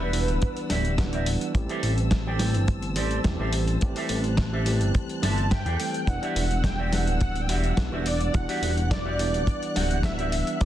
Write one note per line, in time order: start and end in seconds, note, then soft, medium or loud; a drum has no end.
0.00 0.29 E1 medium
0.00 0.10 B3 medium
0.00 0.10 D4 medium
0.00 0.35 F#4 medium
0.00 0.35 G4 medium
0.00 0.94 B4 loud
0.00 0.35 D5 medium
0.00 1.51 D5 medium
0.00 0.35 E5 loud
0.00 0.11 F#5 medium
0.00 1.51 F#5 medium
0.00 1.51 E6 medium
0.12 0.95 E3 medium
0.12 0.95 G3 medium
0.12 0.95 B3 medium
0.12 0.95 D4 medium
0.12 0.96 F#5 medium
0.12 open hi-hat loud
0.28 0.39 D1 medium
0.28 closed hi-hat medium
0.42 kick loud
0.42 closed hi-hat medium
0.57 closed hi-hat soft
0.69 1.37 D1 medium
0.69 0.91 F#4 loud
0.69 0.91 G4 loud
0.69 0.91 D5 loud
0.69 0.92 E5 loud
0.69 snare medium
0.69 open hi-hat loud
0.85 closed hi-hat medium
0.98 1.52 E3 medium
0.98 1.52 G3 medium
0.98 1.52 B3 medium
0.98 1.52 D4 medium
0.98 1.52 F#5 medium
0.98 kick loud
0.98 snare loud
0.98 closed hi-hat medium
1.13 1.27 F#4 medium
1.13 1.27 G4 medium
1.13 1.27 D5 medium
1.13 1.27 E5 loud
1.13 closed hi-hat soft
1.26 open hi-hat loud
1.41 muted clean electric guitar stroke soft
1.41 closed hi-hat medium
1.54 1.67 A1 loud
1.54 2.36 E3 medium
1.54 2.37 G3 medium
1.54 2.37 A3 medium
1.54 2.37 C4 medium
1.54 2.37 G4 medium
1.54 6.04 C5 medium
1.54 6.04 A5 medium
1.54 3.79 E6 medium
1.54 kick loud
1.54 closed hi-hat medium
1.69 1.91 G4 loud
1.69 1.91 A4 loud
1.69 1.91 C5 loud
1.69 1.91 E5 loud
1.69 closed hi-hat soft
1.83 2.56 A1 medium
1.83 open hi-hat loud
1.98 closed hi-hat medium
2.11 muted clean electric guitar stroke soft
2.11 kick medium
2.11 snare loud
2.11 closed hi-hat medium
2.27 2.62 G4 medium
2.27 2.62 A4 medium
2.27 2.62 C5 medium
2.27 2.62 G5 loud
2.39 3.21 E3 medium
2.39 3.22 G3 medium
2.39 3.22 A3 medium
2.39 3.22 C4 medium
2.39 3.22 G4 medium
2.39 snare medium
2.39 open hi-hat loud
2.54 2.98 G1 medium
2.54 closed hi-hat medium
2.68 kick loud
2.68 closed hi-hat medium
2.82 closed hi-hat soft
2.96 3.20 A1 medium
2.96 3.18 G4 loud
2.96 3.18 A4 loud
2.96 3.18 C5 loud
2.96 3.18 D5 loud
2.96 open hi-hat loud
3.11 closed hi-hat medium
3.24 3.37 E1 loud
3.24 3.78 E3 medium
3.24 3.78 G3 medium
3.24 3.78 A3 medium
3.24 3.79 C4 medium
3.24 3.79 G4 medium
3.24 kick loud
3.24 snare loud
3.24 closed hi-hat medium
3.39 3.77 A1 medium
3.39 3.53 G4 loud
3.39 3.53 A4 medium
3.39 3.53 C5 medium
3.39 3.53 E5 loud
3.53 open hi-hat loud
3.68 muted clean electric guitar stroke soft
3.68 closed hi-hat medium
3.81 3.94 A1 loud
3.81 4.63 E3 medium
3.81 4.63 G3 medium
3.81 4.63 A3 medium
3.81 4.63 C4 medium
3.81 4.64 G4 loud
3.81 6.06 F#6 medium
3.81 kick loud
3.81 closed hi-hat medium
3.96 4.17 G4 loud
3.96 4.17 A4 loud
3.96 4.17 C5 loud
3.96 4.17 E5 loud
3.96 open hi-hat medium
4.09 4.82 A1 medium
4.09 open hi-hat loud
4.24 closed hi-hat medium
4.37 muted clean electric guitar stroke soft
4.37 kick loud
4.37 snare loud
4.37 closed hi-hat medium
4.53 4.88 G4 medium
4.53 4.88 A4 medium
4.53 4.88 C5 medium
4.53 4.88 E5 loud
4.66 5.48 E3 medium
4.66 5.48 G3 medium
4.66 5.48 A3 medium
4.66 5.48 C4 medium
4.66 5.49 G4 medium
4.66 open hi-hat loud
4.81 4.92 G1 medium
4.81 closed hi-hat medium
4.95 kick loud
4.95 closed hi-hat medium
5.09 closed hi-hat soft
5.22 5.65 G1 medium
5.22 5.44 G4 loud
5.22 5.44 A4 loud
5.22 5.44 C5 loud
5.22 5.49 D5 medium
5.22 5.44 E5 loud
5.22 5.53 A5 loud
5.22 snare medium
5.22 open hi-hat loud
5.38 closed hi-hat soft
5.51 5.66 E5 medium
5.51 6.10 G5 loud
5.51 kick loud
5.51 snare loud
5.51 closed hi-hat medium
5.66 5.77 E2 medium
5.66 5.79 G4 medium
5.66 5.79 A4 medium
5.66 5.80 C5 medium
5.66 5.78 G5 loud
5.66 closed hi-hat soft
5.79 6.04 E3 medium
5.79 6.04 G3 medium
5.79 6.05 A3 medium
5.79 6.05 C4 medium
5.79 6.05 A4 medium
5.79 5.93 G5 medium
5.79 open hi-hat loud
5.94 muted clean electric guitar stroke soft
5.94 closed hi-hat medium
6.07 6.20 E1 loud
6.07 6.89 E3 medium
6.07 6.89 G3 medium
6.07 6.90 B3 medium
6.07 6.90 D4 medium
6.07 10.57 D5 medium
6.07 10.57 F#5 medium
6.07 6.36 F#5 loud
6.07 6.90 F#5 loud
6.07 8.32 E6 medium
6.07 kick loud
6.07 closed hi-hat medium
6.22 6.43 F#4 loud
6.22 6.43 G4 loud
6.22 6.43 D5 loud
6.22 6.43 E5 loud
6.22 closed hi-hat soft
6.36 7.09 E1 medium
6.36 6.66 F#5 loud
6.36 open hi-hat loud
6.51 closed hi-hat medium
6.64 6.86 G5 loud
6.64 muted clean electric guitar stroke soft
6.64 kick loud
6.64 snare loud
6.64 closed hi-hat medium
6.78 7.14 F#4 medium
6.78 7.14 G4 medium
6.78 7.14 D5 medium
6.78 7.14 E5 loud
6.86 6.95 G5 medium
6.92 7.74 E3 medium
6.92 7.74 G3 medium
6.92 7.74 B3 medium
6.92 7.75 D4 medium
6.92 7.21 F#5 medium
6.92 snare medium
6.92 open hi-hat loud
7.07 7.50 D1 medium
7.07 closed hi-hat medium
7.21 7.43 F#5 medium
7.21 kick loud
7.21 closed hi-hat medium
7.36 closed hi-hat soft
7.42 7.52 G5 medium
7.49 7.73 E1 medium
7.49 7.71 F#4 loud
7.49 7.71 G4 loud
7.49 7.71 D5 loud
7.49 7.71 E5 loud
7.49 7.62 F#5 medium
7.49 open hi-hat loud
7.60 7.70 E5 medium
7.60 closed hi-hat soft
7.69 7.78 F#5 medium
7.77 7.90 B1 loud
7.77 8.31 E3 medium
7.77 8.31 G3 medium
7.77 8.31 B3 medium
7.77 8.31 D4 medium
7.77 8.31 F#5 medium
7.77 kick loud
7.77 snare loud
7.77 closed hi-hat medium
7.92 8.30 E1 loud
7.92 8.06 F#4 loud
7.92 8.06 G4 medium
7.92 8.06 D5 medium
7.92 8.06 E5 loud
8.06 8.36 D5 loud
8.06 open hi-hat loud
8.21 muted clean electric guitar stroke soft
8.21 closed hi-hat medium
8.33 8.46 E1 loud
8.33 9.15 E3 medium
8.33 9.16 G3 medium
8.33 9.16 B3 medium
8.33 9.16 D4 medium
8.33 8.91 F#5 loud
8.33 9.16 F#5 medium
8.33 10.59 F#6 medium
8.33 kick loud
8.33 closed hi-hat medium
8.48 8.70 F#4 loud
8.48 8.70 G4 loud
8.48 8.70 D5 loud
8.48 8.70 E5 loud
8.48 open hi-hat medium
8.62 9.35 E1 medium
8.62 open hi-hat loud
8.77 closed hi-hat medium
8.91 9.72 D5 loud
8.91 kick loud
8.91 snare loud
8.91 closed hi-hat medium
9.05 9.41 F#4 loud
9.05 9.41 G4 medium
9.05 9.41 D5 medium
9.05 9.41 E5 loud
9.18 10.00 E3 medium
9.18 10.01 G3 medium
9.18 10.01 B3 medium
9.18 10.01 D4 medium
9.18 10.01 F#5 medium
9.18 open hi-hat loud
9.34 9.45 D1 loud
9.34 closed hi-hat medium
9.47 kick loud
9.47 closed hi-hat medium
9.63 closed hi-hat soft
9.75 10.43 D1 medium
9.75 9.97 F#4 loud
9.75 9.97 G4 loud
9.75 9.97 D5 loud
9.75 9.97 E5 loud
9.75 10.03 F#5 loud
9.75 snare medium
9.75 open hi-hat loud
9.91 closed hi-hat medium
10.03 10.57 E3 medium
10.03 10.57 G3 medium
10.03 10.57 B3 medium
10.03 10.58 D4 medium
10.03 10.63 E5 loud
10.03 10.58 F#5 medium
10.03 kick loud
10.03 snare loud
10.03 closed hi-hat medium
10.18 10.32 F#4 loud
10.18 10.32 G4 medium
10.18 10.32 D5 medium
10.18 10.32 E5 loud
10.18 closed hi-hat soft
10.32 open hi-hat loud
10.47 muted clean electric guitar stroke soft
10.47 closed hi-hat medium
10.60 10.65 A1 loud
10.60 10.65 E3 medium
10.60 10.65 G3 medium
10.60 10.65 A3 medium
10.60 10.65 C4 medium
10.60 10.65 G4 medium
10.60 10.65 C5 medium
10.60 10.65 D5 loud
10.60 10.65 A5 medium
10.60 10.65 E6 medium
10.60 kick loud
10.60 closed hi-hat medium